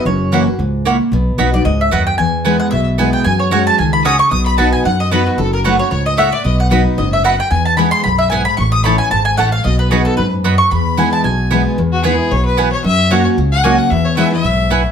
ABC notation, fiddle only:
X:1
M:4/4
L:1/16
Q:"Swing" 1/4=225
K:E
V:1 name="Fiddle"
z16 | z16 | z8 e2 z4 =g2 | g2 c2 f2 a2 g2 b2 d'2 c'2 |
d'2 b2 a2 g2 f2 d2 B2 F2 | A2 ^A2 B2 c2 c2 d2 e2 =d2 | d2 f2 z4 d2 e2 f2 =g2 | g2 a2 b2 =c'2 b2 e2 g2 b2 |
c'2 d'2 b2 g2 a2 g2 f2 =f2 | d2 B2 G2 A2 B2 z4 c'2 | b6 a2 g6- g z | z2 F2 G4 c2 B4 c2 |
e4 c2 z4 f2 g2 f2 | e2 c2 e2 e8 z2 |]